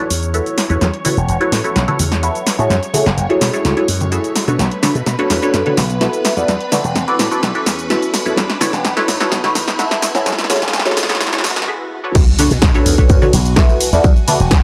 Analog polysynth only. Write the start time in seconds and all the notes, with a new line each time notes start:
0.34 E4 F#4 A4 B4 E5
0.69 E4 F#4 A4 B4 C#5
1.04 E4 F#4 A4 B4 C#5
1.40 E4 F#4 A4 B4 C#5
1.64 E4 F#4 A4 B4 C#5
1.88 E4 F#4 A4 B4 C#5
2.23 E4 F#4 A4 B4 E5
2.58 E4 F#4 G#4 A4 C#5
2.94 E4 F#4 G#4 A4 C#5
3.29 E4 F#4 G#4 A4 C#5
3.53 E4 F#4 G#4 A4 C#5
3.77 E4 F#4 G#4 A4 C#5
4.12 E4 F#4 G#4 A4 E5
4.47 D4 F#4 A4 B4 C#5
4.83 D4 F#4 A4 B4 C#5
5.19 D4 F#4 A4 B4 C#5
5.42 D4 F#4 A4 B4 C#5
5.66 D4 F#4 A4 B4 C#5
6.01 E4 F#4 A4 B4 E5
6.37 E4 F#4 A4 B4 D5
6.72 E4 F#4 A4 B4 D5
7.08 E4 F#4 A4 B4 D5
7.31 E4 F#4 A4 B4 D5
7.55 E4 F#4 A4 B4 D5
7.90 E4 F#4 A4 B4 E5
8.26 E4 F#4 A4 B4 C#5
8.61 E4 F#4 A4 B4 C#5
8.96 E4 F#4 A4 B4 C#5
9.20 E4 F#4 A4 B4 C#5
9.44 E4 F#4 A4 B4 C#5
9.79 E4 F#4 A4 B4 E5
10.15 E4 F#4 G#4 A4 C#5
10.50 E4 F#4 G#4 A4 C#5
10.85 E4 F#4 G#4 A4 C#5
11.09 E4 F#4 G#4 A4 C#5
11.33 E4 F#4 G#4 A4 C#5
11.68 E4 F#4 G#4 A4 E5
12.04 D4 F#4 A4 B4 C#5
12.39 D4 F#4 A4 B4 C#5
12.75 D4 F#4 A4 B4 C#5
12.98 D4 F#4 A4 B4 C#5
13.22 D4 F#4 A4 B4 C#5
13.57 E4 F#4 A4 B4 E5
13.93 E4 F#4 A4 B4 D5
14.27 E4 F#4 A4 B4 D5